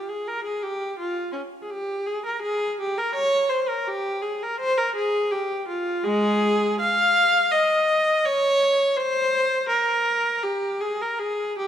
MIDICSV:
0, 0, Header, 1, 2, 480
1, 0, Start_track
1, 0, Tempo, 722022
1, 1134, Time_signature, 3, 2, 24, 8
1, 4011, Tempo, 733496
1, 6891, Tempo, 759494
1, 7675, End_track
2, 0, Start_track
2, 0, Title_t, "Viola"
2, 0, Program_c, 0, 41
2, 58, Note_on_c, 0, 68, 73
2, 175, Note_off_c, 0, 68, 0
2, 184, Note_on_c, 0, 70, 81
2, 293, Note_on_c, 0, 68, 75
2, 297, Note_off_c, 0, 70, 0
2, 409, Note_off_c, 0, 68, 0
2, 413, Note_on_c, 0, 67, 83
2, 652, Note_off_c, 0, 67, 0
2, 659, Note_on_c, 0, 65, 80
2, 882, Note_on_c, 0, 61, 62
2, 892, Note_off_c, 0, 65, 0
2, 935, Note_off_c, 0, 61, 0
2, 1076, Note_on_c, 0, 68, 57
2, 1128, Note_off_c, 0, 68, 0
2, 1130, Note_on_c, 0, 67, 86
2, 1370, Note_on_c, 0, 68, 86
2, 1373, Note_off_c, 0, 67, 0
2, 1492, Note_off_c, 0, 68, 0
2, 1501, Note_on_c, 0, 70, 78
2, 1609, Note_on_c, 0, 68, 92
2, 1615, Note_off_c, 0, 70, 0
2, 1846, Note_off_c, 0, 68, 0
2, 1863, Note_on_c, 0, 67, 87
2, 1976, Note_off_c, 0, 67, 0
2, 1979, Note_on_c, 0, 70, 91
2, 2093, Note_on_c, 0, 73, 107
2, 2096, Note_off_c, 0, 70, 0
2, 2321, Note_on_c, 0, 72, 88
2, 2328, Note_off_c, 0, 73, 0
2, 2447, Note_off_c, 0, 72, 0
2, 2450, Note_on_c, 0, 70, 80
2, 2572, Note_off_c, 0, 70, 0
2, 2574, Note_on_c, 0, 67, 94
2, 2805, Note_on_c, 0, 68, 80
2, 2813, Note_off_c, 0, 67, 0
2, 2929, Note_off_c, 0, 68, 0
2, 2941, Note_on_c, 0, 70, 87
2, 3057, Note_off_c, 0, 70, 0
2, 3057, Note_on_c, 0, 72, 105
2, 3173, Note_off_c, 0, 72, 0
2, 3174, Note_on_c, 0, 70, 93
2, 3293, Note_off_c, 0, 70, 0
2, 3293, Note_on_c, 0, 68, 102
2, 3527, Note_off_c, 0, 68, 0
2, 3529, Note_on_c, 0, 67, 94
2, 3769, Note_off_c, 0, 67, 0
2, 3776, Note_on_c, 0, 65, 93
2, 4010, Note_off_c, 0, 65, 0
2, 4011, Note_on_c, 0, 56, 94
2, 4015, Note_on_c, 0, 68, 111
2, 4476, Note_off_c, 0, 56, 0
2, 4504, Note_off_c, 0, 68, 0
2, 4512, Note_on_c, 0, 77, 121
2, 4975, Note_off_c, 0, 77, 0
2, 4980, Note_on_c, 0, 75, 104
2, 5455, Note_off_c, 0, 75, 0
2, 5464, Note_on_c, 0, 73, 113
2, 5931, Note_on_c, 0, 72, 120
2, 5934, Note_off_c, 0, 73, 0
2, 6404, Note_on_c, 0, 70, 103
2, 6410, Note_off_c, 0, 72, 0
2, 6879, Note_off_c, 0, 70, 0
2, 6889, Note_on_c, 0, 67, 90
2, 7124, Note_off_c, 0, 67, 0
2, 7124, Note_on_c, 0, 68, 92
2, 7244, Note_off_c, 0, 68, 0
2, 7257, Note_on_c, 0, 70, 84
2, 7367, Note_on_c, 0, 68, 90
2, 7371, Note_off_c, 0, 70, 0
2, 7611, Note_off_c, 0, 68, 0
2, 7616, Note_on_c, 0, 67, 89
2, 7675, Note_off_c, 0, 67, 0
2, 7675, End_track
0, 0, End_of_file